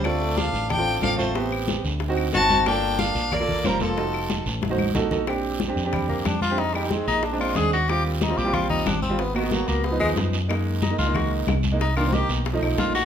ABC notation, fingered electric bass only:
X:1
M:4/4
L:1/8
Q:1/4=184
K:Bb
V:1 name="Fingered electric bass" clef=bass
D,,3 A,,,3 A,,,2- | A,,,3 D,,3 G,,,2- | G,,,3 B,,,3 F,,,2- | F,,,3 A,,,3 B,,,2- |
B,,,3 F,,3 F,,2- | F,,3 B,,,3 E,,2- | E,,3 B,,,3 _A,,,2- | _A,,,3 _D,,2 E,, _G,,2- |
_G,,3 _D,,3 C,,2- | C,,3 _C,,2 =B,,, _B,,,2 |]